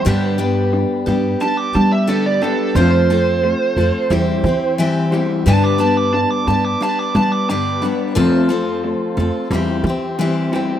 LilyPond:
<<
  \new Staff \with { instrumentName = "Lead electric guitar" } { \time 4/4 \key g \mixolydian \tempo 4 = 89 r2 a''16 d'''16 a''16 e''16 a'16 d''16 a'8 | c''2. r4 | a''16 d'''16 a''16 d'''16 a''16 d'''16 a''16 d'''16 a''16 d'''16 a''16 d'''16 d'''8 r8 | r1 | }
  \new Staff \with { instrumentName = "Tonewheel organ" } { \time 4/4 \key g \mixolydian <b d' g' b'>1 | <c' f' a' c''>2 <c' e' g' c''>2 | <b d' g' b'>1 | <c' f' a' c''>2 <c' e' g' c''>2 | }
  \new Staff \with { instrumentName = "Steel-string acoustic guitar" } { \time 4/4 \key g \mixolydian <g, d g b d' g'>8 <g, d g b d' g'>4 <g b d' g'>8 <g b d' g'>8 <g b d' g'>8 <g, d g b d' g'>8 <g b d' g'>8 | <f c' f' a'>8 <f c' f' a'>4 <c' f' a'>8 <g c' e' g'>8 <c' e' g'>8 <e g c' e' g'>8 <c' e' g'>8 | <g, d g b d' b'>8 <g, d g b d' b'>4 <g b d' b'>8 <g b d' b'>8 <g b d' b'>8 <g, d g b d' b'>8 <g b d' b'>8 | <f c' f' a'>8 <f c' f' a'>4 <c' f' a'>8 <g c' e' g'>8 <c' e' g'>8 <e g c' e' g'>8 <c' e' g'>8 | }
  \new Staff \with { instrumentName = "Clean electric guitar" } { \clef bass \time 4/4 \key g \mixolydian <g b d'>8 <g d'>8 <g d'>8 <g d'>8 <g d'>8 <g d'>8 <g d'>8 <g b d'>8 | <f a c'>8 <f a>8 <f a>8 <f a>8 <e, e g>8 <e, e>8 <e, e>8 <e, e g>8 | <g b d'>8 <g d'>8 <g d'>8 <g d'>8 <g d'>8 <g d'>8 <g d'>8 <g b d'>8 | <f a c'>8 <f a>8 <f a>8 <f a>8 <e, e g>8 <e, e>8 <e, e>8 <e, e g>8 | }
  \new Staff \with { instrumentName = "Upright bass" } { \clef bass \time 4/4 \key g \mixolydian g,4. g,8 r8 g4. | f,4. f,16 r16 e,8 e4. | g,4. g,8 r8 g4. | f,4. f,16 r16 e,8 e4. | }
>>